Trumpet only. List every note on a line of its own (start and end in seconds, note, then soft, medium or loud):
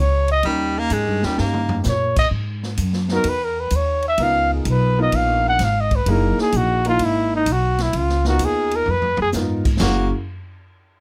0.00 0.28 C#5 medium
0.31 0.44 D#5 loud
1.89 2.17 C#5 medium
2.19 2.27 D#5 medium
3.14 3.30 A#4 medium
3.29 3.46 B4 medium
3.44 3.61 A#4 medium
3.60 3.77 B4 medium
3.76 4.06 C#5 medium
4.08 4.24 E5 medium
4.23 4.53 F5 medium
4.54 4.70 G#4 soft
4.70 5.00 B4 medium
5.02 5.17 D#5 medium
5.16 5.46 F5 medium
5.48 5.66 F#5 loud
5.64 5.82 F5 medium
5.81 5.97 D#5 medium
5.96 6.12 B4 medium
6.11 6.41 A#4 medium
6.41 6.58 G#4 medium
6.57 6.87 F#4 medium
6.89 7.06 F4 medium
7.04 7.34 E4 medium
7.36 7.53 D#4 medium
7.52 7.84 F#4 medium
7.82 7.98 E4 medium
7.96 8.27 F4 medium
8.28 8.46 F#4 medium
8.45 8.77 G#4 medium
8.76 8.92 A#4 medium
8.91 9.21 B4 medium
9.21 9.30 G#4 medium
9.82 10.11 F#4 medium